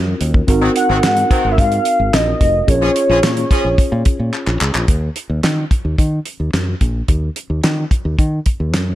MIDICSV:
0, 0, Header, 1, 6, 480
1, 0, Start_track
1, 0, Tempo, 550459
1, 419, Time_signature, 4, 2, 24, 8
1, 7804, End_track
2, 0, Start_track
2, 0, Title_t, "Soft synth lead"
2, 0, Program_c, 0, 80
2, 666, Note_on_c, 0, 78, 117
2, 1287, Note_off_c, 0, 78, 0
2, 1325, Note_on_c, 0, 76, 82
2, 1386, Note_on_c, 0, 77, 122
2, 1399, Note_off_c, 0, 76, 0
2, 1868, Note_on_c, 0, 75, 116
2, 1881, Note_off_c, 0, 77, 0
2, 2345, Note_on_c, 0, 73, 109
2, 2358, Note_off_c, 0, 75, 0
2, 3782, Note_off_c, 0, 73, 0
2, 7804, End_track
3, 0, Start_track
3, 0, Title_t, "Tine electric piano"
3, 0, Program_c, 1, 4
3, 0, Note_on_c, 1, 61, 68
3, 0, Note_on_c, 1, 65, 64
3, 0, Note_on_c, 1, 66, 67
3, 0, Note_on_c, 1, 70, 80
3, 380, Note_off_c, 1, 61, 0
3, 383, Note_off_c, 1, 65, 0
3, 385, Note_off_c, 1, 66, 0
3, 388, Note_off_c, 1, 70, 0
3, 411, Note_on_c, 1, 60, 78
3, 417, Note_on_c, 1, 63, 78
3, 422, Note_on_c, 1, 66, 81
3, 426, Note_on_c, 1, 70, 87
3, 2301, Note_off_c, 1, 60, 0
3, 2303, Note_off_c, 1, 63, 0
3, 2306, Note_off_c, 1, 66, 0
3, 2308, Note_off_c, 1, 70, 0
3, 2328, Note_on_c, 1, 61, 71
3, 2333, Note_on_c, 1, 65, 62
3, 2337, Note_on_c, 1, 68, 62
3, 2343, Note_on_c, 1, 70, 62
3, 2398, Note_off_c, 1, 70, 0
3, 2400, Note_on_c, 1, 73, 75
3, 4219, Note_off_c, 1, 61, 0
3, 4221, Note_off_c, 1, 65, 0
3, 4224, Note_off_c, 1, 68, 0
3, 4255, Note_off_c, 1, 73, 0
3, 7804, End_track
4, 0, Start_track
4, 0, Title_t, "Horn section"
4, 0, Program_c, 2, 61
4, 540, Note_on_c, 2, 51, 102
4, 540, Note_on_c, 2, 60, 97
4, 540, Note_on_c, 2, 66, 102
4, 616, Note_off_c, 2, 51, 0
4, 616, Note_off_c, 2, 60, 0
4, 616, Note_off_c, 2, 66, 0
4, 779, Note_on_c, 2, 60, 93
4, 779, Note_on_c, 2, 66, 112
4, 780, Note_on_c, 2, 51, 101
4, 856, Note_off_c, 2, 51, 0
4, 856, Note_off_c, 2, 60, 0
4, 856, Note_off_c, 2, 66, 0
4, 1138, Note_on_c, 2, 60, 103
4, 1138, Note_on_c, 2, 66, 98
4, 1139, Note_on_c, 2, 51, 99
4, 1444, Note_off_c, 2, 60, 0
4, 1444, Note_off_c, 2, 66, 0
4, 1445, Note_off_c, 2, 51, 0
4, 2458, Note_on_c, 2, 53, 100
4, 2459, Note_on_c, 2, 61, 105
4, 2459, Note_on_c, 2, 68, 107
4, 2535, Note_off_c, 2, 53, 0
4, 2535, Note_off_c, 2, 61, 0
4, 2536, Note_off_c, 2, 68, 0
4, 2697, Note_on_c, 2, 61, 98
4, 2698, Note_on_c, 2, 53, 102
4, 2698, Note_on_c, 2, 68, 115
4, 2774, Note_off_c, 2, 61, 0
4, 2775, Note_off_c, 2, 53, 0
4, 2775, Note_off_c, 2, 68, 0
4, 3059, Note_on_c, 2, 53, 87
4, 3059, Note_on_c, 2, 61, 90
4, 3059, Note_on_c, 2, 68, 105
4, 3212, Note_off_c, 2, 53, 0
4, 3212, Note_off_c, 2, 61, 0
4, 3212, Note_off_c, 2, 68, 0
4, 7804, End_track
5, 0, Start_track
5, 0, Title_t, "Fingered electric bass"
5, 0, Program_c, 3, 33
5, 0, Note_on_c, 3, 42, 90
5, 114, Note_off_c, 3, 42, 0
5, 182, Note_on_c, 3, 39, 100
5, 354, Note_off_c, 3, 39, 0
5, 420, Note_on_c, 3, 32, 105
5, 593, Note_off_c, 3, 32, 0
5, 781, Note_on_c, 3, 32, 95
5, 867, Note_off_c, 3, 32, 0
5, 901, Note_on_c, 3, 44, 108
5, 1073, Note_off_c, 3, 44, 0
5, 1261, Note_on_c, 3, 32, 101
5, 1380, Note_on_c, 3, 44, 101
5, 1393, Note_off_c, 3, 32, 0
5, 1552, Note_off_c, 3, 44, 0
5, 1740, Note_on_c, 3, 32, 87
5, 1826, Note_off_c, 3, 32, 0
5, 1860, Note_on_c, 3, 34, 91
5, 2033, Note_off_c, 3, 34, 0
5, 2099, Note_on_c, 3, 29, 99
5, 2272, Note_off_c, 3, 29, 0
5, 2339, Note_on_c, 3, 34, 100
5, 2512, Note_off_c, 3, 34, 0
5, 2699, Note_on_c, 3, 34, 106
5, 2785, Note_off_c, 3, 34, 0
5, 2820, Note_on_c, 3, 46, 96
5, 2992, Note_off_c, 3, 46, 0
5, 3179, Note_on_c, 3, 34, 89
5, 3266, Note_off_c, 3, 34, 0
5, 3419, Note_on_c, 3, 46, 98
5, 3505, Note_off_c, 3, 46, 0
5, 3658, Note_on_c, 3, 46, 80
5, 3745, Note_off_c, 3, 46, 0
5, 3899, Note_on_c, 3, 34, 94
5, 3985, Note_off_c, 3, 34, 0
5, 4020, Note_on_c, 3, 37, 93
5, 4106, Note_off_c, 3, 37, 0
5, 4139, Note_on_c, 3, 34, 90
5, 4225, Note_off_c, 3, 34, 0
5, 4258, Note_on_c, 3, 39, 92
5, 4431, Note_off_c, 3, 39, 0
5, 4618, Note_on_c, 3, 39, 84
5, 4705, Note_off_c, 3, 39, 0
5, 4738, Note_on_c, 3, 51, 89
5, 4911, Note_off_c, 3, 51, 0
5, 5098, Note_on_c, 3, 39, 82
5, 5185, Note_off_c, 3, 39, 0
5, 5219, Note_on_c, 3, 51, 95
5, 5392, Note_off_c, 3, 51, 0
5, 5579, Note_on_c, 3, 39, 71
5, 5665, Note_off_c, 3, 39, 0
5, 5699, Note_on_c, 3, 42, 81
5, 5872, Note_off_c, 3, 42, 0
5, 5939, Note_on_c, 3, 34, 86
5, 6112, Note_off_c, 3, 34, 0
5, 6178, Note_on_c, 3, 39, 90
5, 6351, Note_off_c, 3, 39, 0
5, 6538, Note_on_c, 3, 39, 83
5, 6625, Note_off_c, 3, 39, 0
5, 6659, Note_on_c, 3, 51, 101
5, 6832, Note_off_c, 3, 51, 0
5, 7020, Note_on_c, 3, 39, 81
5, 7106, Note_off_c, 3, 39, 0
5, 7138, Note_on_c, 3, 51, 107
5, 7311, Note_off_c, 3, 51, 0
5, 7499, Note_on_c, 3, 39, 77
5, 7618, Note_off_c, 3, 39, 0
5, 7618, Note_on_c, 3, 42, 82
5, 7791, Note_off_c, 3, 42, 0
5, 7804, End_track
6, 0, Start_track
6, 0, Title_t, "Drums"
6, 180, Note_on_c, 9, 42, 82
6, 267, Note_off_c, 9, 42, 0
6, 299, Note_on_c, 9, 36, 97
6, 387, Note_off_c, 9, 36, 0
6, 419, Note_on_c, 9, 42, 105
6, 420, Note_on_c, 9, 36, 111
6, 506, Note_off_c, 9, 42, 0
6, 508, Note_off_c, 9, 36, 0
6, 660, Note_on_c, 9, 42, 92
6, 747, Note_off_c, 9, 42, 0
6, 899, Note_on_c, 9, 42, 87
6, 903, Note_on_c, 9, 38, 115
6, 907, Note_on_c, 9, 39, 93
6, 986, Note_off_c, 9, 42, 0
6, 990, Note_off_c, 9, 38, 0
6, 994, Note_off_c, 9, 39, 0
6, 1017, Note_on_c, 9, 42, 64
6, 1104, Note_off_c, 9, 42, 0
6, 1139, Note_on_c, 9, 36, 105
6, 1142, Note_on_c, 9, 42, 89
6, 1226, Note_off_c, 9, 36, 0
6, 1229, Note_off_c, 9, 42, 0
6, 1379, Note_on_c, 9, 36, 115
6, 1384, Note_on_c, 9, 42, 88
6, 1466, Note_off_c, 9, 36, 0
6, 1471, Note_off_c, 9, 42, 0
6, 1497, Note_on_c, 9, 42, 50
6, 1584, Note_off_c, 9, 42, 0
6, 1616, Note_on_c, 9, 42, 80
6, 1703, Note_off_c, 9, 42, 0
6, 1864, Note_on_c, 9, 38, 117
6, 1864, Note_on_c, 9, 42, 84
6, 1868, Note_on_c, 9, 39, 94
6, 1951, Note_off_c, 9, 38, 0
6, 1951, Note_off_c, 9, 42, 0
6, 1955, Note_off_c, 9, 39, 0
6, 2100, Note_on_c, 9, 36, 91
6, 2100, Note_on_c, 9, 42, 78
6, 2187, Note_off_c, 9, 36, 0
6, 2187, Note_off_c, 9, 42, 0
6, 2339, Note_on_c, 9, 36, 113
6, 2340, Note_on_c, 9, 42, 109
6, 2426, Note_off_c, 9, 36, 0
6, 2427, Note_off_c, 9, 42, 0
6, 2579, Note_on_c, 9, 42, 87
6, 2666, Note_off_c, 9, 42, 0
6, 2818, Note_on_c, 9, 42, 93
6, 2822, Note_on_c, 9, 38, 117
6, 2826, Note_on_c, 9, 39, 94
6, 2905, Note_off_c, 9, 42, 0
6, 2909, Note_off_c, 9, 38, 0
6, 2913, Note_off_c, 9, 39, 0
6, 2937, Note_on_c, 9, 42, 62
6, 3025, Note_off_c, 9, 42, 0
6, 3058, Note_on_c, 9, 36, 102
6, 3062, Note_on_c, 9, 42, 89
6, 3145, Note_off_c, 9, 36, 0
6, 3149, Note_off_c, 9, 42, 0
6, 3298, Note_on_c, 9, 36, 121
6, 3303, Note_on_c, 9, 42, 80
6, 3385, Note_off_c, 9, 36, 0
6, 3390, Note_off_c, 9, 42, 0
6, 3535, Note_on_c, 9, 42, 83
6, 3540, Note_on_c, 9, 36, 101
6, 3622, Note_off_c, 9, 42, 0
6, 3627, Note_off_c, 9, 36, 0
6, 3781, Note_on_c, 9, 39, 54
6, 3868, Note_off_c, 9, 39, 0
6, 3901, Note_on_c, 9, 39, 59
6, 3988, Note_off_c, 9, 39, 0
6, 4021, Note_on_c, 9, 39, 99
6, 4108, Note_off_c, 9, 39, 0
6, 4139, Note_on_c, 9, 39, 96
6, 4227, Note_off_c, 9, 39, 0
6, 4257, Note_on_c, 9, 42, 88
6, 4258, Note_on_c, 9, 36, 109
6, 4344, Note_off_c, 9, 42, 0
6, 4345, Note_off_c, 9, 36, 0
6, 4498, Note_on_c, 9, 42, 79
6, 4585, Note_off_c, 9, 42, 0
6, 4738, Note_on_c, 9, 42, 83
6, 4743, Note_on_c, 9, 38, 101
6, 4746, Note_on_c, 9, 39, 77
6, 4825, Note_off_c, 9, 42, 0
6, 4830, Note_off_c, 9, 38, 0
6, 4834, Note_off_c, 9, 39, 0
6, 4979, Note_on_c, 9, 36, 93
6, 4982, Note_on_c, 9, 42, 72
6, 5066, Note_off_c, 9, 36, 0
6, 5069, Note_off_c, 9, 42, 0
6, 5219, Note_on_c, 9, 36, 104
6, 5224, Note_on_c, 9, 42, 83
6, 5306, Note_off_c, 9, 36, 0
6, 5311, Note_off_c, 9, 42, 0
6, 5454, Note_on_c, 9, 42, 74
6, 5541, Note_off_c, 9, 42, 0
6, 5701, Note_on_c, 9, 38, 100
6, 5701, Note_on_c, 9, 42, 78
6, 5705, Note_on_c, 9, 39, 73
6, 5789, Note_off_c, 9, 38, 0
6, 5789, Note_off_c, 9, 42, 0
6, 5793, Note_off_c, 9, 39, 0
6, 5938, Note_on_c, 9, 42, 77
6, 5939, Note_on_c, 9, 36, 84
6, 6025, Note_off_c, 9, 42, 0
6, 6026, Note_off_c, 9, 36, 0
6, 6177, Note_on_c, 9, 42, 97
6, 6179, Note_on_c, 9, 36, 102
6, 6265, Note_off_c, 9, 42, 0
6, 6266, Note_off_c, 9, 36, 0
6, 6419, Note_on_c, 9, 42, 86
6, 6506, Note_off_c, 9, 42, 0
6, 6658, Note_on_c, 9, 42, 81
6, 6662, Note_on_c, 9, 38, 102
6, 6666, Note_on_c, 9, 39, 86
6, 6745, Note_off_c, 9, 42, 0
6, 6749, Note_off_c, 9, 38, 0
6, 6753, Note_off_c, 9, 39, 0
6, 6898, Note_on_c, 9, 36, 92
6, 6900, Note_on_c, 9, 42, 76
6, 6985, Note_off_c, 9, 36, 0
6, 6987, Note_off_c, 9, 42, 0
6, 7138, Note_on_c, 9, 36, 112
6, 7143, Note_on_c, 9, 42, 78
6, 7225, Note_off_c, 9, 36, 0
6, 7230, Note_off_c, 9, 42, 0
6, 7375, Note_on_c, 9, 42, 81
6, 7379, Note_on_c, 9, 36, 83
6, 7462, Note_off_c, 9, 42, 0
6, 7467, Note_off_c, 9, 36, 0
6, 7622, Note_on_c, 9, 38, 99
6, 7622, Note_on_c, 9, 42, 80
6, 7626, Note_on_c, 9, 39, 76
6, 7709, Note_off_c, 9, 38, 0
6, 7709, Note_off_c, 9, 42, 0
6, 7713, Note_off_c, 9, 39, 0
6, 7804, End_track
0, 0, End_of_file